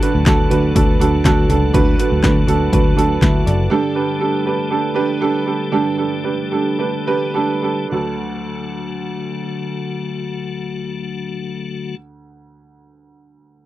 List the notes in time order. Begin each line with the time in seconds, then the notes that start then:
Already playing: A2 D3 F#3 A3 F#4
0.02 D4 F#4 B4, closed hi-hat
0.15 D2
0.26 D2 D4 F#4 A4, kick, snare, clap, closed hi-hat
0.50 D2 D4 F#4 B4, closed hi-hat
0.74 D2 D4 F#4 A4, kick, closed hi-hat
1.00 D2 D4 F#4 A4, closed hi-hat
1.24 D2 D4 F#4 A4, kick, snare, clap, closed hi-hat
1.49 C#2 D4 F#4 A4, snare, closed hi-hat
1.73 D2 A2 D4 F#4 B4, kick, closed hi-hat
1.99 D4 F#4 B4, closed hi-hat
2.12 D2
2.23 D2 D4 F#4 B4, kick, snare, clap, closed hi-hat
2.47 D2 D4 F#4 A4, closed hi-hat
2.72 D2 D4 F#4 B4, kick, closed hi-hat
2.97 D2 D4 F#4 A4, closed hi-hat
3.22 D2 E4 A4, kick, snare, clap, closed hi-hat
3.46 F#1 A4 D5, snare, closed hi-hat
3.70 G2 D3 G3 D4 G4 A4
3.95 D4 G4 B4
4.20 D4 G4 A4
4.46 D4 G4 B4
4.70 D4 G4 A4
4.94 D4 G4 B4
5.21 D4 G4 A4
5.46 D4 G4 A4
5.72 G2 D3 D4 G4 A4
5.97 D4 G4 A4
6.24 D4 G4 B4
6.51 D4 G4 A4
6.79 D4 G4 B4
7.07 D4 G4 B4
7.34 D4 G4 A4
7.62 D4 G4 A4
7.90 D2 D3 F#3 A3 D4 F#4 A4